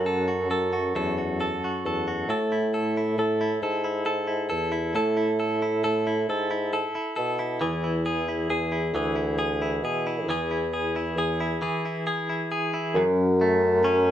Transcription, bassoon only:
0.00 0.47 F#2 medium
0.50 0.93 F#2 medium
0.95 1.54 E2 medium
1.85 2.27 E2 medium
2.28 3.14 A2 medium
3.18 3.60 A2 medium
3.62 4.47 G#2 medium
4.51 4.93 E2 medium
4.96 5.81 A2 medium
5.85 6.27 A2 medium
6.29 6.87 G#2 medium
7.17 7.59 B2 medium
7.61 8.47 E2 medium
8.50 8.92 E2 medium
8.93 9.79 D2 medium
9.83 10.29 B2 medium
10.27 11.13 E2 medium
11.16 11.58 E2 medium
12.94 14.11 F#2 loud

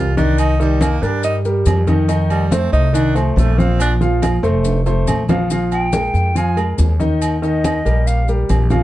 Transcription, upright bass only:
0.00 0.96 C2 loud
1.02 1.62 G2 medium
1.66 2.67 F2 loud
2.72 3.33 C2 loud
3.36 4.37 A#1 loud
4.43 5.03 F1 loud
5.07 6.08 A#1 loud
6.14 6.74 F2 medium
6.79 7.79 D#2 medium
7.86 8.46 A#1 medium
8.50 8.83 A#1 loud

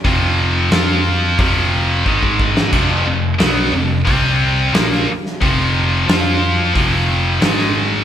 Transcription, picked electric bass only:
0.05 0.68 F1 medium
0.72 1.35 F2 medium
1.39 2.02 F1 loud
2.06 2.69 G#1 medium
2.73 3.04 F1 medium
3.05 3.37 F1 medium
3.40 3.71 B1 medium
3.73 4.04 F1 medium
4.07 4.70 C2 loud
4.73 5.05 A#1 medium
5.41 6.04 F1 loud
6.08 6.71 F2 medium
6.75 7.38 F1 loud
7.42 8.04 G#1 loud

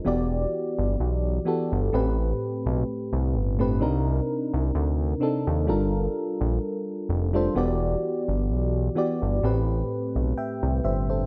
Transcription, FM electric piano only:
0.05 1.18 E3 medium
0.05 1.18 B3 medium
0.05 1.19 F#4 medium
0.05 1.19 G4 medium
0.05 1.19 D5 medium
1.45 1.93 E3 medium
1.45 1.93 B3 medium
1.45 1.93 F#4 medium
1.45 1.93 G4 medium
1.45 1.94 A4 medium
1.92 3.25 A2 medium
1.92 3.25 A3 medium
1.92 3.25 C4 medium
1.92 3.26 G4 medium
1.92 3.26 B4 medium
3.58 3.76 A2 medium
3.58 3.76 A3 medium
3.58 3.76 C4 medium
3.58 3.77 G4 medium
3.58 3.77 B4 loud
3.80 4.93 C3 medium
3.80 4.93 C4 medium
3.80 4.94 D4 medium
3.80 4.94 D#4 medium
3.80 4.94 A#4 loud
5.20 5.68 C3 medium
5.20 5.68 C4 medium
5.20 5.67 D4 medium
5.20 5.69 D#4 medium
5.20 5.68 A4 medium
5.67 7.00 G3 medium
5.67 7.00 D4 medium
5.67 7.00 F4 medium
5.67 7.01 A4 medium
5.67 7.01 A#4 medium
7.33 7.51 G3 medium
7.33 7.51 D4 medium
7.33 7.51 F4 medium
7.33 7.52 A4 medium
7.33 7.52 C5 medium
7.55 8.68 E3 medium
7.55 8.68 B3 medium
7.55 8.69 F#4 medium
7.55 8.69 G4 medium
7.55 8.70 D5 medium
8.95 9.43 E3 medium
8.95 9.43 B3 medium
8.95 9.43 F#4 medium
8.95 9.43 G4 medium
8.95 9.44 D5 medium
9.42 10.75 A2 medium
9.42 10.75 A3 medium
9.42 10.76 C4 medium
9.42 10.76 G4 medium
9.42 10.38 B4 medium
10.38 10.82 E5 medium
10.38 10.82 G5 medium
10.84 11.08 C5 medium
10.84 11.08 E5 medium
11.10 11.26 A4 medium
11.10 11.26 C5 medium

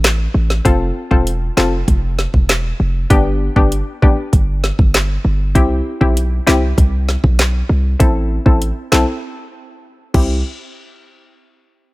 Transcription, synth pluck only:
0.65 1.07 C4 medium
0.65 1.08 F4 medium
0.65 1.08 A4 loud
1.11 1.26 C4 medium
1.11 1.26 F4 medium
1.11 1.26 A4 medium
1.57 1.72 C4 medium
1.57 1.72 F4 medium
1.57 1.72 A4 medium
3.10 3.52 B3 medium
3.10 3.52 D4 medium
3.10 3.53 G4 loud
3.56 3.71 B3 medium
3.56 3.71 D4 medium
3.56 3.71 G4 medium
4.02 4.17 B3 medium
4.02 4.17 D4 medium
4.02 4.17 G4 medium
5.55 5.97 C4 medium
5.55 5.97 E4 medium
5.55 5.98 G4 loud
6.01 6.16 C4 medium
6.01 6.16 E4 medium
6.01 6.16 G4 medium
6.47 6.62 C4 medium
6.47 6.62 E4 medium
6.47 6.62 G4 medium
7.99 8.42 C4 medium
7.99 8.42 E4 medium
7.99 8.42 A4 loud
8.46 8.61 C4 medium
8.46 8.61 E4 medium
8.46 8.61 A4 medium
8.92 9.07 C4 medium
8.92 9.07 E4 medium
8.92 9.07 A4 medium
10.14 10.37 C4 medium
10.14 10.37 E4 medium
10.14 10.37 G4 medium

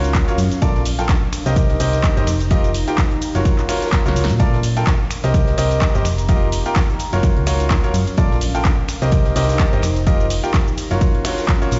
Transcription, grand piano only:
0.00 0.25 F4 medium
0.00 0.25 F#4 medium
0.00 0.25 A#4 medium
0.00 0.25 C#5 medium
0.28 0.37 F4 medium
0.28 0.37 F#4 medium
0.28 0.37 A#4 medium
0.28 0.37 C#5 medium
0.62 0.79 F4 medium
0.62 0.79 A4 medium
0.62 0.79 A#4 medium
0.62 0.79 D5 loud
0.99 1.08 F4 medium
0.99 1.08 A4 medium
0.99 1.08 A#4 medium
0.99 1.08 G5 medium
1.46 1.77 G4 medium
1.46 1.78 A#4 medium
1.46 1.77 C5 medium
1.46 1.77 D#5 medium
1.80 2.14 G4 medium
1.80 2.14 A#4 medium
1.80 2.14 C5 medium
1.80 2.14 D#5 loud
2.17 2.26 G4 medium
2.17 2.26 A#4 medium
2.17 2.26 C5 medium
2.17 2.26 D#5 medium
2.51 2.68 F4 medium
2.51 2.68 G4 medium
2.51 2.68 A#4 medium
2.51 2.68 D#5 loud
2.88 2.97 F4 medium
2.88 2.97 G4 medium
2.88 2.97 A#4 medium
2.88 2.97 G5 medium
3.35 3.66 F4 medium
3.35 3.66 F#4 medium
3.35 3.66 A#4 medium
3.35 3.66 C#5 medium
3.69 4.03 F4 medium
3.69 4.03 F#4 medium
3.69 4.03 A#4 medium
3.69 4.03 C#5 medium
4.06 4.21 F4 medium
4.06 4.21 F#4 medium
4.06 4.21 A#4 medium
4.06 4.21 C#5 loud
4.40 4.57 F4 loud
4.40 4.57 A4 medium
4.40 4.57 A#4 medium
4.40 4.57 D5 loud
4.77 4.86 F4 medium
4.77 4.86 A4 medium
4.77 4.86 A#4 medium
4.77 4.86 G5 medium
5.24 5.55 G4 medium
5.24 5.55 A#4 medium
5.24 5.55 C5 medium
5.24 5.55 D#5 medium
5.58 5.92 G4 medium
5.58 5.92 A#4 medium
5.58 5.92 C5 medium
5.58 5.92 D#5 loud
5.95 6.04 G4 medium
5.95 6.04 A#4 medium
5.95 6.04 C5 medium
5.95 6.04 D#5 medium
6.29 6.46 F4 loud
6.29 6.46 G4 medium
6.29 6.46 A#4 medium
6.29 6.46 D#5 loud
6.66 6.75 F4 medium
6.66 6.75 G4 medium
6.66 6.75 A#4 medium
6.66 6.75 G5 medium
7.13 7.44 F4 medium
7.13 7.44 F#4 medium
7.13 7.44 A#4 medium
7.13 7.44 C#5 medium
7.47 7.81 F4 medium
7.47 7.81 F#4 medium
7.47 7.81 A#4 medium
7.47 7.81 C#5 loud
7.84 7.93 F4 medium
7.84 7.93 F#4 medium
7.84 7.93 A#4 medium
7.84 7.93 C#5 medium
8.18 8.35 F4 loud
8.18 8.35 A4 medium
8.18 8.35 A#4 medium
8.18 8.35 D5 loud
8.55 8.64 F4 medium
8.55 8.64 A4 medium
8.55 8.64 A#4 medium
8.55 8.64 G5 medium
9.02 9.33 G4 medium
9.02 9.33 A#4 medium
9.02 9.33 C5 medium
9.02 9.33 D#5 medium
9.36 9.70 G4 medium
9.36 9.70 A#4 medium
9.36 9.70 C5 medium
9.36 9.70 D#5 loud
9.73 9.82 G4 medium
9.73 9.82 A#4 medium
9.73 9.82 C5 medium
9.73 9.82 D#5 medium
10.07 10.24 F4 medium
10.07 10.24 G4 medium
10.07 10.24 A#4 medium
10.07 10.24 D#5 loud
10.44 10.53 F4 medium
10.44 10.53 G4 medium
10.44 10.53 A#4 medium
10.44 10.53 G5 medium
10.91 11.22 F4 medium
10.91 11.22 F#4 medium
10.91 11.22 A#4 medium
10.91 11.22 C#5 medium
11.25 11.59 F4 medium
11.25 11.59 F#4 medium
11.25 11.59 A#4 medium
11.25 11.59 C#5 medium
11.62 11.77 F4 medium
11.62 11.77 F#4 medium
11.62 11.77 A#4 medium
11.62 11.77 C#5 loud

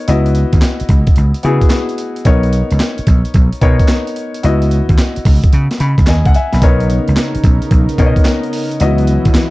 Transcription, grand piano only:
0.08 1.09 B3 medium
0.08 1.09 E4 medium
0.08 1.09 F#4 medium
0.08 1.10 D#5 medium
1.43 2.20 B3 medium
1.43 2.20 E4 medium
1.43 2.20 F#4 medium
1.43 2.20 G#4 medium
2.25 3.27 B3 medium
2.25 3.27 D#4 medium
2.25 3.27 A#4 medium
2.25 3.27 C#5 medium
3.61 4.38 B3 medium
3.61 4.38 D#4 medium
3.61 4.38 A#4 medium
3.61 4.38 C#5 medium
4.43 5.45 B3 medium
4.43 5.45 E4 medium
4.43 5.45 F#4 medium
4.43 5.46 D#5 medium
5.80 6.06 B5 medium
6.08 6.25 D#5 medium
6.08 6.33 G#5 medium
6.26 6.34 F#5 medium
6.35 6.60 E5 medium
6.35 6.52 G#5 medium
6.54 6.79 B5 medium
6.62 7.63 B3 medium
6.62 7.64 D#4 medium
6.62 7.64 A#4 medium
6.62 7.64 C#5 medium
7.99 8.75 B3 medium
7.99 8.75 D#4 medium
7.99 8.75 A#4 medium
7.99 8.08 C#5 medium
8.06 8.78 D#5 medium
8.80 9.50 B3 medium
8.80 9.50 E4 medium
8.80 9.50 F#4 medium
8.80 9.50 D#5 loud

